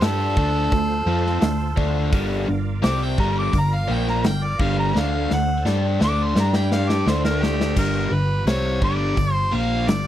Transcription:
Already playing: F4 A4 C5
0.01 G2 G3 D4 G4 A4, snare, open hi-hat
0.36 D2 D3 A3 D4, kick
0.72 D2 D3 A3, kick, open hi-hat
1.06 F2 F3 C4 F4
1.26 snare
1.41 D2 D3 A3, snare, open hi-hat
1.77 D2 D3 A3 D4, kick
2.12 G1 G2 D3 G3 F4 A#4 D5, kick, open hi-hat
2.48 G1 G2 D3
2.82 C2 C3 G3 C4 D6, snare, open hi-hat
3.03 G5
3.18 G1 G2 D3 G3 A#5, kick
3.39 D6
3.53 G1 G2 D3, kick, open hi-hat
3.58 A#5
3.75 F5
3.88 A#1 A#2 F3 A#3
3.93 G5
4.07 A#5, snare
4.24 G1 G2 D3 G5, snare, open hi-hat
4.44 D5
4.59 G1 G2 D3 G3 F5, kick
4.79 A#5
4.94 D2 D3 A3 D4 A4 C5, snare
4.99 F5
5.31 D2 D3 A3 F#5, snare
5.65 G2 G3 D4 G4, snare
6.00 D2 D3 A3 D4, snare
6.05 D6
6.23 C6
6.35 G2 G3 D4 G4 D5, snare
6.40 A#5
6.53 G5, snare
6.72 F5, snare
6.89 D5, snare
7.06 D2 D3 A3 D4 F4 A4 C5, snare
7.25 A#4, snare
7.43 G4, snare
7.61 snare
7.76 G1 G2 D3 G3 F4 G4 A#4 A#5, kick, crash
8.10 G1 G2 D3 B4
8.45 C2 C3 G3 C4 C#5, snare, open hi-hat
8.81 G1 G2 D3 G3 D5, kick
9.16 G1 G2 D3, kick, open hi-hat
9.33 C5
9.52 A#1 A#2 F3 A#3 F5
9.87 G1 G2 D3 D5, snare, open hi-hat

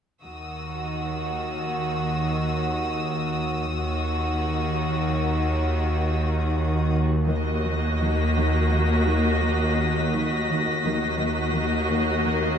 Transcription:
0.23 D#2 D#3 F#4 D#6 E6
3.76 D#2 D#3 F#4
7.28 D#2 D#3 A#3 F#4 D#5 A#6
7.64 D#3
8.00 D#3 B6
8.34 D#3
8.70 D#3
9.05 D#3
9.40 D#3
9.76 D#4
10.11 D#3
10.47 D#3
10.81 D#2 D#3 A#3 F#4 D#5
11.17 D#3
11.53 D#3
11.87 D#3
12.23 D#3
12.48 C7

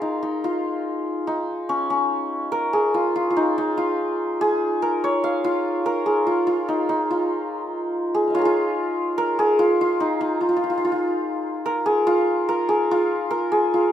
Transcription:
Already playing: F4 G#4 A#4
0.02 D#4
0.23 D#4
0.44 F4
1.27 D#4
1.69 C#4
1.90 C#4
2.52 A#4
2.73 G#4
2.94 F4
3.16 F4
3.30 F4
3.37 D#4
3.58 D#4
3.77 F4
4.41 G#4
4.82 A#4
5.04 C#5
5.24 F5
5.44 F4
5.86 A#4
6.06 G#4
6.27 F4
6.47 F4
6.69 D#4
6.89 D#4
7.11 F4
8.14 G#4
8.27 D#5 F5
8.34 F4 C#5
8.38 G#4 A#4
8.45 F4
9.18 A#4
9.39 G#4
9.59 F4
9.81 F4
10.00 D#4
10.21 D#4
10.41 F4
10.49 F4
10.57 F4
10.64 F4
10.70 F4
10.78 F4
10.85 F4
10.92 F4
11.66 A#4
11.86 G#4
12.07 F4
12.49 A#4
12.69 G#4
12.91 F4
13.31 A#4
13.52 G#4
13.74 F4

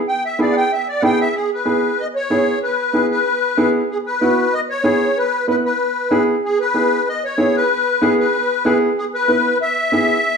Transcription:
0.08 G5
0.25 E5
0.39 B3 E4 G#4 D5
0.52 F#5
0.57 G5
0.73 E5
0.88 D5
1.00 B3 E4 G#4 F#5 G5
1.21 E5
1.36 G#4
1.54 B4
1.65 B3 E4 G#4
2.00 D#5
2.15 C#5
2.30 B3 E4 G#4
2.63 B4
2.93 B3 E4 G#4
3.11 B4
3.57 B3 E4 G#4
3.91 G#4
4.06 B4
4.21 B3 E4 F#4
4.54 D#5
4.70 C#5
4.84 B3 E4 G#4
5.18 B4
5.48 B3 E4 B4
5.65 B4
6.11 B3 E4 G#4
6.45 G#4
6.60 B4
6.74 B3 E4 G#4
7.09 D#5
7.25 C#5
7.38 B3 E4 G#4
7.57 B4
8.02 B3 E4 G#4
8.20 B4
8.65 B3 E4 G#4
8.98 G#4
9.14 B4
9.28 B3 E4 B4
9.62 E5
9.92 B3 E4 G#4

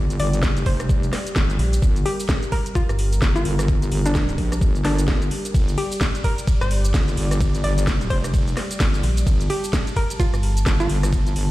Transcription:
Already playing: G1 G3 G4 D5
0.10 closed hi-hat, shaker
0.20 G1 D5, open hi-hat
0.33 closed hi-hat, shaker
0.43 kick, snare, shaker
0.57 closed hi-hat, shaker
0.66 F1 C5, kick, open hi-hat
0.80 cross-stick, closed hi-hat, shaker
0.89 kick, shaker
1.03 closed hi-hat, shaker
1.13 cross-stick, snare, open hi-hat
1.27 closed hi-hat, shaker
1.36 G1, kick, snare, shaker
1.50 closed hi-hat, shaker
1.59 A#1, open hi-hat
1.73 closed hi-hat, shaker
1.82 G1 A#4, kick, shaker
1.96 closed hi-hat, shaker
2.06 G4, open hi-hat
2.20 open hi-hat, shaker
2.29 A1, kick, snare, shaker
2.43 closed hi-hat, shaker
2.52 A#4, kick, open hi-hat
2.66 closed hi-hat, shaker
2.75 F4, kick, shaker
2.89 G1, cross-stick, closed hi-hat, shaker
2.99 open hi-hat
3.13 closed hi-hat, shaker
3.22 G1, kick, snare, shaker
3.36 F4, closed hi-hat, shaker
3.45 G1, open hi-hat
3.59 cross-stick, closed hi-hat, shaker
3.68 kick, shaker
3.82 closed hi-hat, shaker
3.92 G1, open hi-hat
4.06 D4, closed hi-hat, shaker
4.15 kick, snare, shaker
4.29 closed hi-hat, shaker
4.38 A#1, kick, open hi-hat
4.52 cross-stick, closed hi-hat, shaker
4.61 G1, kick, shaker
4.75 closed hi-hat, shaker
4.85 G1 D4, cross-stick, snare, open hi-hat
4.99 closed hi-hat, shaker
5.08 kick, snare, shaker
5.22 closed hi-hat, shaker
5.31 open hi-hat
5.45 closed hi-hat, shaker
5.54 G1 D5, kick, ride, shaker
5.68 closed hi-hat, shaker
5.78 G4, open hi-hat
5.92 open hi-hat, shaker
6.01 A1, kick, snare, ride, shaker
6.15 closed hi-hat, shaker
6.24 A#4, kick, open hi-hat
6.38 closed hi-hat, shaker
6.47 kick, ride, shaker
6.61 G1 C5, cross-stick, closed hi-hat, shaker
6.71 open hi-hat
6.85 closed hi-hat, shaker
6.94 G1, kick, snare, ride, shaker
7.08 closed hi-hat, shaker
7.17 G1, open hi-hat
7.31 cross-stick, closed hi-hat, shaker
7.41 kick, ride, shaker
7.55 closed hi-hat, shaker
7.64 G1 D5, open hi-hat
7.78 closed hi-hat, shaker
7.87 kick, snare, ride, shaker
8.01 closed hi-hat, shaker
8.10 F1 C5, kick, open hi-hat
8.24 cross-stick, closed hi-hat, shaker
8.34 kick, ride, shaker
8.48 closed hi-hat, shaker
8.57 cross-stick, snare, open hi-hat
8.71 closed hi-hat, shaker
8.80 G1, kick, snare, ride, shaker
8.94 closed hi-hat, shaker
9.03 A#1, open hi-hat
9.17 closed hi-hat, shaker
9.27 G1 A5, kick, ride, shaker
9.41 closed hi-hat, shaker
9.50 G4, open hi-hat
9.64 open hi-hat, shaker
9.73 A1, kick, snare, ride, shaker
9.87 closed hi-hat, shaker
9.96 A#4, kick, open hi-hat
10.10 closed hi-hat, shaker
10.20 F4, kick, ride, shaker
10.34 G1, cross-stick, closed hi-hat, shaker
10.43 open hi-hat
10.57 closed hi-hat, shaker
10.66 G1, kick, snare, ride, shaker
10.80 F4, closed hi-hat, shaker
10.89 G1, open hi-hat
11.03 cross-stick, closed hi-hat, shaker
11.13 kick, ride, shaker
11.27 closed hi-hat, shaker
11.36 G1, open hi-hat

